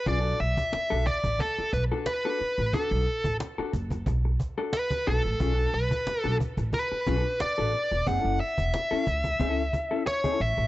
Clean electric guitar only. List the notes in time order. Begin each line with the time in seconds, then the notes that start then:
0.06 C#4 F4 G#4
0.19 D4 F#4 A4
0.57 muted clean electric guitar stroke
0.72 muted clean electric guitar stroke
0.90 D4 F#4 A4
1.06 muted clean electric guitar stroke
1.24 muted clean electric guitar stroke
1.41 muted clean electric guitar stroke
1.58 muted clean electric guitar stroke
1.92 D4 F#4 A4
2.08 muted clean electric guitar stroke
2.25 D4 F#4 A4
2.41 muted clean electric guitar stroke
2.59 muted clean electric guitar stroke
2.74 D4 F#4 A4
3.25 muted clean electric guitar stroke
3.40 muted clean electric guitar stroke
3.58 D4 F#4 A4
3.74 muted clean electric guitar stroke
3.92 muted clean electric guitar stroke
4.07 muted clean electric guitar stroke
4.25 muted clean electric guitar stroke
4.58 D4 F#4 A4
4.92 muted clean electric guitar stroke
5.07 D4 F#4 A4
5.25 muted clean electric guitar stroke
5.40 C#4 F4 G#4
5.53 D4 F#4 A4
5.91 muted clean electric guitar stroke
6.07 muted clean electric guitar stroke
6.24 D4 F#4 A4
6.41 muted clean electric guitar stroke
6.58 muted clean electric guitar stroke
6.73 muted clean electric guitar stroke
6.92 muted clean electric guitar stroke
7.07 D4 F#4 A4
7.25 muted clean electric guitar stroke
7.40 muted clean electric guitar stroke
7.58 D4 F#4 A4
7.74 muted clean electric guitar stroke
7.92 muted clean electric guitar stroke
8.07 C4 D#4 G#4
8.20 C#4 E4 A4
8.58 muted clean electric guitar stroke
8.75 muted clean electric guitar stroke
8.91 C#4 E4 A4
9.07 muted clean electric guitar stroke
9.25 muted clean electric guitar stroke
9.40 C#4 E4 A4
9.74 muted clean electric guitar stroke
9.91 C#4 E4 A4
10.07 muted clean electric guitar stroke
10.24 C#4 E4 A4
10.58 muted clean electric guitar stroke